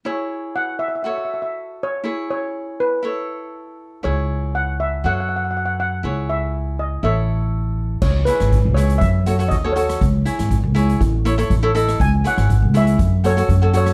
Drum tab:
CC |----------------|----------------|----------------|----------------|
HH |----------------|----------------|----------------|----------------|
SD |----------------|----------------|----------------|----------------|
BD |----------------|----------------|----------------|----------------|

CC |x---------------|----------------|----------------|
HH |--xxx-xxx-xxx-xx|x-xxx-xxx-xxx-xx|x-xxx-xxx-xxx-xx|
SD |---r-----------r|---r-----------r|---r-----------r|
BD |o---o---o---o---|o---o---o---o---|o---o---o---o---|